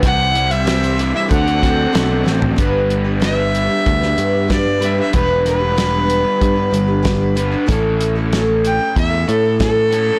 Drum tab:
HH |x-xxxxx-xxx-x---|x-x-x-x-x-x-x-x-|x-x-x-x-x-x-x-x-|x-x-x-x-x-x-x-x-|
SD |----o-----o-o-o-|----o----o--o---|--o-o-------o---|----o-------o---|
FT |---------------o|----------------|----------------|----------------|
BD |o-------o-o-----|o-------o---o---|o-------o---o---|o-------o---o---|